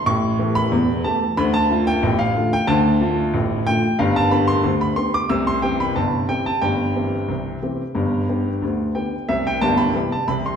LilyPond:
<<
  \new Staff \with { instrumentName = "Upright piano" } { \time 2/4 \key c \major \tempo 4 = 91 des'''8. b''8. a''8 | b''16 a''8 g''8 f''8 g''16 | a''4 r8 g''8 | f''16 a''16 b''16 c'''8 b''16 c'''16 d'''16 |
e'''16 c'''16 g''16 b''16 a''8 g''16 a''16 | g''2~ | g''4. g''8 | e''16 g''16 a''16 b''8 a''16 b''16 c'''16 | }
  \new Staff \with { instrumentName = "Upright piano" } { \clef bass \time 2/4 \key c \major <a,, a,>8 <e a g'>8 <e,, e,>8 <e a g'>8 | <d, d>8 <d a f'>8 <a,, a,>8 <d a f'>8 | <d, d>8 <d a f'>8 <a,, a,>8 <d a f'>8 | <g,, g,>8 <d b g'>8 <d, d>8 <d b g'>8 |
<c, c>8 <e c' g'>8 <g,, g,>8 <e c' g'>8 | <g,, g,>8 <e c' g'>8 <c, c>8 <e c' g'>8 | <g,, g,>8 <d b g'>8 <d, d>8 <d b g'>8 | <c, c>8 <g,, g,>8 <e g g'>8 <c, c>8 | }
>>